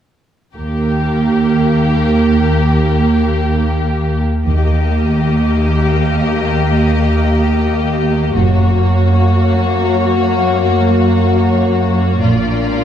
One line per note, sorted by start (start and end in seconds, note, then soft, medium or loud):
0.56 4.22 D#2 soft
0.56 4.23 D#2 soft
0.56 4.22 A#3 soft
0.56 4.22 G4 soft
0.56 4.22 A#4 soft
4.46 8.32 D#2 soft
4.46 4.92 D#2 soft
4.46 8.32 A#3 soft
4.46 8.32 G4 soft
4.46 8.32 D#5 soft
8.36 8.81 F#1 soft
8.36 12.18 F#2 soft
8.36 12.04 A#3 medium
8.36 12.18 A#3 soft
8.36 12.18 F#4 soft
8.36 12.04 F#4 medium
8.36 12.18 C#5 soft
12.21 12.67 A#1 medium
12.21 12.84 A#2 medium
12.21 12.84 A#3 medium
12.21 12.84 D4 medium
12.21 12.84 F4 medium
12.21 12.84 D5 soft